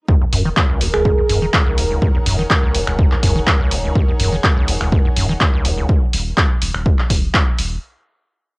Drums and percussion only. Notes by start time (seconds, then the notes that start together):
0.08 kick
0.33 open hi-hat
0.57 kick, clap
0.81 open hi-hat
0.94 finger snap
1.05 kick
1.29 open hi-hat
1.54 kick, clap
1.78 open hi-hat
2.02 kick
2.26 open hi-hat
2.50 kick, clap
2.75 open hi-hat
2.87 finger snap
2.99 kick
3.12 clap
3.23 kick, open hi-hat
3.47 kick, clap
3.71 open hi-hat
3.96 kick
4.20 open hi-hat
4.44 kick, clap
4.68 open hi-hat
4.81 finger snap
4.92 kick
5.16 open hi-hat
5.41 kick, clap
5.65 open hi-hat
5.89 kick
6.13 open hi-hat
6.37 kick, clap
6.62 open hi-hat
6.74 finger snap
6.86 kick
6.99 clap
7.10 kick, open hi-hat
7.34 kick, clap
7.58 open hi-hat